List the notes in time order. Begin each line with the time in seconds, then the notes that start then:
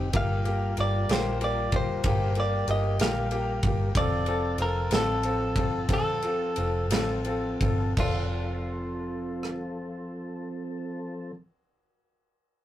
Already playing: F1
0.13 G1 G3 A#3 F4 G4 A#4 F5, kick, ride
0.45 A#3 F4 G4, ride
0.77 G1 A#3 F4 G4 D5, ride
1.09 A#1 A#3 F4 G4 C5, snare, ride
1.41 A#3 F4 G4 D5, ride
1.72 F1 A#3 F4 G4, kick, ride
1.76 C5
2.03 G1 A#3 F4 G4, kick, ride
2.35 A#3 F4 G4, ride
2.40 D5
2.67 G1 A#3 F4 G4 D#5, ride
2.99 A#1 A#3 F4 G4 F5, snare, ride
3.31 A#3 F4 G4, ride
3.63 G1 A#3 F4 G4, kick, ride
3.95 F1 F3 C4 F4 A4 D5 A5, kick, ride
4.26 C4 F4 A4, ride
4.58 F1 C4 F4 A4 A#4, ride
4.91 A1 C4 F4 A4, snare, ride
5.23 C4 F4 A4, ride
5.56 G1 C4 F4 A4, kick, ride
5.89 F1 C4 F4 A4, kick, ride
5.94 A4
6.22 C4 F4 A4, ride
6.56 F1 C4 F4 A4, ride
6.90 A1 C4 F4 A4, snare, ride
7.25 C4 F4 A4, ride
7.60 G1 C4 F4 A4, kick, ride
7.97 F1 F3 C4 F4 A4, kick, crash
9.43 cross-stick